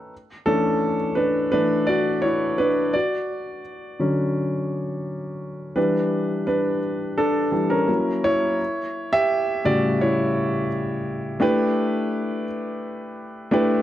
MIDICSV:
0, 0, Header, 1, 2, 480
1, 0, Start_track
1, 0, Tempo, 706714
1, 79, Time_signature, 4, 2, 24, 8
1, 9388, End_track
2, 0, Start_track
2, 0, Title_t, "Grand piano"
2, 0, Program_c, 0, 0
2, 0, Control_c, 0, 64, 127
2, 88, Control_c, 0, 64, 0
2, 192, Control_c, 0, 64, 127
2, 310, Note_on_c, 0, 52, 52
2, 311, Note_on_c, 0, 69, 89
2, 312, Note_on_c, 0, 57, 49
2, 319, Note_on_c, 0, 61, 58
2, 320, Note_on_c, 0, 62, 55
2, 633, Note_off_c, 0, 52, 0
2, 634, Note_off_c, 0, 57, 0
2, 638, Note_off_c, 0, 62, 0
2, 771, Note_off_c, 0, 61, 0
2, 783, Note_on_c, 0, 71, 80
2, 796, Note_on_c, 0, 62, 62
2, 809, Note_off_c, 0, 69, 0
2, 1020, Note_off_c, 0, 62, 0
2, 1020, Note_off_c, 0, 71, 0
2, 1030, Note_on_c, 0, 71, 90
2, 1035, Note_on_c, 0, 52, 49
2, 1040, Note_on_c, 0, 62, 70
2, 1041, Note_on_c, 0, 57, 43
2, 1252, Note_off_c, 0, 52, 0
2, 1255, Note_off_c, 0, 57, 0
2, 1264, Note_off_c, 0, 62, 0
2, 1268, Note_on_c, 0, 74, 89
2, 1281, Note_off_c, 0, 71, 0
2, 1282, Note_on_c, 0, 66, 73
2, 1503, Note_off_c, 0, 66, 0
2, 1506, Note_on_c, 0, 73, 86
2, 1520, Note_off_c, 0, 74, 0
2, 1521, Note_on_c, 0, 64, 63
2, 1742, Note_off_c, 0, 64, 0
2, 1752, Note_on_c, 0, 71, 86
2, 1759, Note_off_c, 0, 73, 0
2, 1764, Note_on_c, 0, 62, 64
2, 1807, Note_off_c, 0, 71, 0
2, 1818, Note_off_c, 0, 62, 0
2, 1993, Note_on_c, 0, 74, 78
2, 2007, Control_c, 0, 64, 0
2, 2007, Note_on_c, 0, 66, 58
2, 2117, Control_c, 0, 64, 127
2, 2448, Note_off_c, 0, 74, 0
2, 2454, Note_off_c, 0, 66, 0
2, 2713, Note_on_c, 0, 50, 52
2, 2716, Note_on_c, 0, 54, 49
2, 2720, Note_on_c, 0, 61, 55
2, 3887, Note_off_c, 0, 50, 0
2, 3889, Note_off_c, 0, 54, 0
2, 3891, Note_off_c, 0, 61, 0
2, 3910, Note_on_c, 0, 52, 51
2, 3910, Note_on_c, 0, 71, 76
2, 3915, Note_on_c, 0, 55, 48
2, 3918, Note_on_c, 0, 62, 65
2, 3925, Control_c, 0, 64, 0
2, 4035, Control_c, 0, 64, 127
2, 4370, Note_off_c, 0, 62, 0
2, 4383, Note_off_c, 0, 71, 0
2, 4393, Note_on_c, 0, 71, 77
2, 4399, Note_on_c, 0, 62, 61
2, 4606, Note_off_c, 0, 52, 0
2, 4608, Note_off_c, 0, 55, 0
2, 4848, Note_off_c, 0, 71, 0
2, 4850, Note_off_c, 0, 62, 0
2, 4874, Note_on_c, 0, 69, 84
2, 4878, Note_on_c, 0, 62, 67
2, 5099, Note_off_c, 0, 62, 0
2, 5103, Note_on_c, 0, 52, 45
2, 5107, Note_on_c, 0, 55, 43
2, 5109, Note_on_c, 0, 62, 52
2, 5230, Note_on_c, 0, 70, 84
2, 5235, Note_on_c, 0, 61, 60
2, 5246, Note_off_c, 0, 69, 0
2, 5325, Note_off_c, 0, 52, 0
2, 5327, Note_off_c, 0, 55, 0
2, 5328, Note_off_c, 0, 62, 0
2, 5348, Note_on_c, 0, 54, 49
2, 5348, Note_on_c, 0, 58, 46
2, 5352, Note_on_c, 0, 64, 54
2, 5364, Control_c, 0, 64, 0
2, 5488, Control_c, 0, 64, 127
2, 5570, Note_off_c, 0, 61, 0
2, 5590, Note_off_c, 0, 64, 0
2, 5598, Note_on_c, 0, 73, 99
2, 5600, Note_on_c, 0, 64, 72
2, 5604, Note_off_c, 0, 70, 0
2, 5808, Note_off_c, 0, 54, 0
2, 5808, Note_off_c, 0, 58, 0
2, 5845, Control_c, 0, 64, 0
2, 5972, Control_c, 0, 64, 127
2, 6170, Note_off_c, 0, 73, 0
2, 6171, Note_off_c, 0, 64, 0
2, 6198, Note_on_c, 0, 76, 109
2, 6201, Note_on_c, 0, 67, 75
2, 6534, Note_off_c, 0, 67, 0
2, 6551, Note_on_c, 0, 45, 54
2, 6557, Note_on_c, 0, 74, 95
2, 6558, Note_on_c, 0, 55, 52
2, 6559, Note_on_c, 0, 49, 58
2, 6561, Note_on_c, 0, 66, 73
2, 6568, Note_off_c, 0, 76, 0
2, 6782, Note_off_c, 0, 66, 0
2, 6802, Note_on_c, 0, 73, 85
2, 6804, Note_off_c, 0, 74, 0
2, 6807, Note_on_c, 0, 64, 72
2, 7247, Note_off_c, 0, 45, 0
2, 7250, Note_off_c, 0, 49, 0
2, 7250, Note_off_c, 0, 55, 0
2, 7252, Note_off_c, 0, 73, 0
2, 7254, Note_off_c, 0, 64, 0
2, 7741, Note_on_c, 0, 57, 82
2, 7745, Note_on_c, 0, 62, 76
2, 7750, Note_on_c, 0, 64, 77
2, 7753, Note_on_c, 0, 67, 79
2, 7757, Note_on_c, 0, 71, 100
2, 7766, Control_c, 0, 64, 0
2, 7898, Control_c, 0, 64, 127
2, 8453, Note_off_c, 0, 57, 0
2, 8456, Note_off_c, 0, 62, 0
2, 8458, Note_off_c, 0, 64, 0
2, 8459, Note_off_c, 0, 67, 0
2, 8462, Note_off_c, 0, 71, 0
2, 9178, Note_on_c, 0, 57, 89
2, 9182, Note_on_c, 0, 62, 78
2, 9188, Note_on_c, 0, 64, 75
2, 9193, Note_on_c, 0, 67, 77
2, 9193, Note_on_c, 0, 71, 94
2, 9388, Note_off_c, 0, 57, 0
2, 9388, Note_off_c, 0, 62, 0
2, 9388, Note_off_c, 0, 64, 0
2, 9388, Note_off_c, 0, 67, 0
2, 9388, Note_off_c, 0, 71, 0
2, 9388, End_track
0, 0, End_of_file